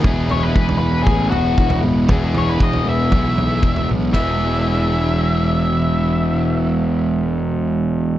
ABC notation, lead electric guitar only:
X:1
M:4/4
L:1/16
Q:1/4=117
K:E
V:1 name="Lead electric guitar"
z2 c B3 B2 G2 F4 z2 | z2 c B d2 e8 z2 | e16- | e16 |]